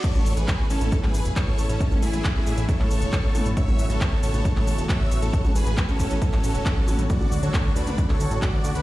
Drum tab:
CC |x---------------|----------------|----------------|----------------|
HH |x-oxx-oxx-oxx-ox|x-oxx-oxx-oxx-ox|x-oxx-oxx-oxx-ox|x-oxx-oxx-oxx-ox|
SH |xxxxx-xxx-xxx-xx|xxxxx-xxx-xxx-xx|xxxxx-xxx-xxx-xx|xxxxxxxxxxxxx-xx|
CP |----x----x--x---|----x----x--x---|----x----x--x---|----x----x--x---|
T2 |-o-----o--------|-o------------o-|-o-----o--------|-o------------o-|
BD |o---o---o---o---|o---o---o---o---|o---o---o---o---|o---o-o-o---o---|

CC |----------------|
HH |x-oxx-oxx-oxx-ox|
SH |xxxxx-xxx-xxx-xx|
CP |----x----x--x---|
T2 |-o-----o--------|
BD |o---o---o---o---|